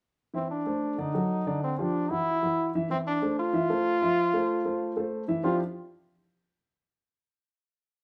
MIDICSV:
0, 0, Header, 1, 3, 480
1, 0, Start_track
1, 0, Key_signature, -1, "major"
1, 0, Tempo, 318302
1, 516, Time_signature, 4, 2, 24, 8
1, 12109, End_track
2, 0, Start_track
2, 0, Title_t, "Grand piano"
2, 0, Program_c, 0, 0
2, 506, Note_on_c, 0, 52, 66
2, 516, Note_on_c, 0, 64, 71
2, 520, Note_on_c, 0, 76, 64
2, 905, Note_off_c, 0, 52, 0
2, 911, Note_off_c, 0, 64, 0
2, 913, Note_off_c, 0, 76, 0
2, 999, Note_on_c, 0, 57, 61
2, 999, Note_on_c, 0, 69, 62
2, 1006, Note_on_c, 0, 72, 65
2, 1393, Note_off_c, 0, 57, 0
2, 1393, Note_off_c, 0, 69, 0
2, 1397, Note_off_c, 0, 72, 0
2, 1483, Note_on_c, 0, 50, 74
2, 1485, Note_on_c, 0, 62, 74
2, 1489, Note_on_c, 0, 74, 75
2, 1679, Note_off_c, 0, 50, 0
2, 1680, Note_off_c, 0, 62, 0
2, 1682, Note_off_c, 0, 74, 0
2, 1718, Note_on_c, 0, 54, 71
2, 1725, Note_on_c, 0, 69, 67
2, 1727, Note_on_c, 0, 66, 72
2, 2114, Note_off_c, 0, 54, 0
2, 2118, Note_off_c, 0, 69, 0
2, 2119, Note_off_c, 0, 66, 0
2, 2211, Note_on_c, 0, 50, 80
2, 2219, Note_on_c, 0, 62, 78
2, 2219, Note_on_c, 0, 74, 79
2, 2602, Note_off_c, 0, 50, 0
2, 2607, Note_off_c, 0, 62, 0
2, 2607, Note_off_c, 0, 74, 0
2, 2691, Note_on_c, 0, 53, 66
2, 2700, Note_on_c, 0, 65, 69
2, 2700, Note_on_c, 0, 67, 68
2, 3084, Note_off_c, 0, 53, 0
2, 3089, Note_off_c, 0, 65, 0
2, 3089, Note_off_c, 0, 67, 0
2, 3176, Note_on_c, 0, 64, 64
2, 3177, Note_on_c, 0, 52, 69
2, 3178, Note_on_c, 0, 66, 69
2, 3567, Note_off_c, 0, 64, 0
2, 3568, Note_off_c, 0, 52, 0
2, 3569, Note_off_c, 0, 66, 0
2, 3658, Note_on_c, 0, 52, 76
2, 3659, Note_on_c, 0, 64, 69
2, 3661, Note_on_c, 0, 66, 67
2, 4049, Note_off_c, 0, 52, 0
2, 4050, Note_off_c, 0, 64, 0
2, 4051, Note_off_c, 0, 66, 0
2, 4148, Note_on_c, 0, 52, 80
2, 4151, Note_on_c, 0, 76, 82
2, 4152, Note_on_c, 0, 64, 80
2, 4338, Note_off_c, 0, 52, 0
2, 4340, Note_off_c, 0, 76, 0
2, 4341, Note_off_c, 0, 64, 0
2, 4367, Note_on_c, 0, 52, 71
2, 4372, Note_on_c, 0, 64, 71
2, 4378, Note_on_c, 0, 76, 70
2, 4763, Note_off_c, 0, 52, 0
2, 4767, Note_off_c, 0, 64, 0
2, 4770, Note_off_c, 0, 76, 0
2, 4858, Note_on_c, 0, 57, 65
2, 4864, Note_on_c, 0, 72, 69
2, 4868, Note_on_c, 0, 69, 67
2, 5251, Note_off_c, 0, 57, 0
2, 5254, Note_off_c, 0, 72, 0
2, 5257, Note_off_c, 0, 69, 0
2, 5325, Note_on_c, 0, 52, 82
2, 5333, Note_on_c, 0, 64, 76
2, 5342, Note_on_c, 0, 76, 78
2, 5526, Note_off_c, 0, 52, 0
2, 5531, Note_off_c, 0, 64, 0
2, 5536, Note_off_c, 0, 76, 0
2, 5575, Note_on_c, 0, 57, 73
2, 5580, Note_on_c, 0, 69, 73
2, 5592, Note_on_c, 0, 72, 75
2, 5969, Note_off_c, 0, 57, 0
2, 5972, Note_off_c, 0, 69, 0
2, 5979, Note_off_c, 0, 72, 0
2, 6056, Note_on_c, 0, 53, 77
2, 6067, Note_on_c, 0, 65, 78
2, 6072, Note_on_c, 0, 76, 80
2, 6450, Note_off_c, 0, 53, 0
2, 6456, Note_off_c, 0, 65, 0
2, 6459, Note_off_c, 0, 76, 0
2, 6538, Note_on_c, 0, 57, 67
2, 6547, Note_on_c, 0, 72, 72
2, 6551, Note_on_c, 0, 69, 70
2, 6931, Note_off_c, 0, 57, 0
2, 6936, Note_off_c, 0, 72, 0
2, 6938, Note_off_c, 0, 69, 0
2, 7016, Note_on_c, 0, 57, 64
2, 7021, Note_on_c, 0, 69, 66
2, 7027, Note_on_c, 0, 72, 67
2, 7409, Note_off_c, 0, 57, 0
2, 7412, Note_off_c, 0, 69, 0
2, 7415, Note_off_c, 0, 72, 0
2, 7487, Note_on_c, 0, 57, 70
2, 7492, Note_on_c, 0, 69, 72
2, 7500, Note_on_c, 0, 72, 72
2, 7883, Note_off_c, 0, 57, 0
2, 7886, Note_off_c, 0, 69, 0
2, 7891, Note_off_c, 0, 72, 0
2, 7963, Note_on_c, 0, 52, 75
2, 7967, Note_on_c, 0, 64, 75
2, 7972, Note_on_c, 0, 76, 78
2, 8164, Note_off_c, 0, 52, 0
2, 8166, Note_off_c, 0, 64, 0
2, 8169, Note_off_c, 0, 76, 0
2, 8193, Note_on_c, 0, 53, 80
2, 8197, Note_on_c, 0, 64, 74
2, 8198, Note_on_c, 0, 62, 78
2, 8200, Note_on_c, 0, 60, 78
2, 8206, Note_on_c, 0, 65, 73
2, 8207, Note_on_c, 0, 67, 89
2, 8424, Note_off_c, 0, 53, 0
2, 8427, Note_off_c, 0, 62, 0
2, 8427, Note_off_c, 0, 64, 0
2, 8429, Note_off_c, 0, 60, 0
2, 8432, Note_off_c, 0, 65, 0
2, 8432, Note_off_c, 0, 67, 0
2, 12109, End_track
3, 0, Start_track
3, 0, Title_t, "Trombone"
3, 0, Program_c, 1, 57
3, 526, Note_on_c, 1, 60, 82
3, 745, Note_off_c, 1, 60, 0
3, 764, Note_on_c, 1, 62, 82
3, 1514, Note_on_c, 1, 63, 86
3, 1537, Note_off_c, 1, 62, 0
3, 2460, Note_off_c, 1, 63, 0
3, 2468, Note_on_c, 1, 60, 88
3, 2723, Note_on_c, 1, 62, 91
3, 2746, Note_off_c, 1, 60, 0
3, 3186, Note_on_c, 1, 64, 104
3, 3209, Note_off_c, 1, 62, 0
3, 4140, Note_off_c, 1, 64, 0
3, 4385, Note_on_c, 1, 60, 93
3, 4490, Note_off_c, 1, 60, 0
3, 4629, Note_on_c, 1, 62, 96
3, 5069, Note_off_c, 1, 62, 0
3, 5114, Note_on_c, 1, 65, 106
3, 7684, Note_off_c, 1, 65, 0
3, 8205, Note_on_c, 1, 65, 88
3, 8431, Note_off_c, 1, 65, 0
3, 12109, End_track
0, 0, End_of_file